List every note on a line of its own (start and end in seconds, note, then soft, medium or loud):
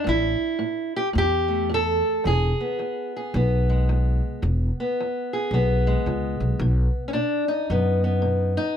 0.04 0.33 A1 loud
0.04 0.56 A2 medium
0.09 0.96 E4 medium
0.59 1.10 A2 medium
0.96 1.08 G4 medium
1.13 2.01 E2 medium
1.13 1.65 A2 medium
1.18 1.71 G4 loud
1.48 2.21 A3 soft
1.69 2.20 A2 medium
1.74 2.26 A4 loud
2.24 2.52 E1 loud
2.24 2.75 E2 medium
2.24 3.14 G#4 medium
2.60 3.36 B3 soft
2.79 3.29 E2 medium
3.16 4.42 G#4 medium
3.34 4.19 B1 loud
3.34 3.85 E2 medium
3.34 4.80 B3 medium
3.70 4.41 G#3 medium
3.89 4.39 E2 medium
4.42 4.69 E1 loud
4.42 4.93 E2 medium
4.80 5.54 B3 medium
5.00 5.49 E2 medium
5.33 6.59 G#4 medium
5.51 5.94 B1 medium
5.51 6.03 E2 medium
5.51 7.08 B3 medium
5.87 6.59 G#3 medium
6.06 6.37 C#2 medium
6.06 6.57 E2 medium
6.40 6.59 B1 medium
6.59 6.87 B1 loud
6.59 7.11 B2 medium
7.08 7.13 C#4 medium
7.13 7.65 B2 medium
7.13 7.48 D4 medium
7.48 8.56 D#4 medium
7.70 8.55 F#2 medium
7.70 8.20 B2 medium
7.70 8.04 B3 medium
8.04 8.77 B3 soft
8.22 8.73 B2 medium
8.57 8.77 D#4 medium